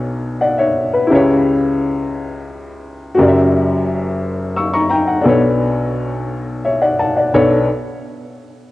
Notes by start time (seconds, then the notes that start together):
Already playing: B1 B2 D4 A4 B4 C#5
0.41 D5 F#5
0.58 C#5 E5
0.94 B4
1.07 C#2 C#3 E4 G4
1.12 B4 C#5
3.15 F#1 F#4 G4
3.19 F#2 A#4 D5
3.28 E5
4.56 C#6 E6
4.74 A#5 C#6
4.90 G5 A#5
5.08 F#5
5.22 B1 B2 D4 A4
5.27 B4 C#5
6.65 C#5 E5
6.82 D5 F#5
6.99 F#5 A5
7.17 D5 F#5
7.34 B1 D4 A4 B4 C#5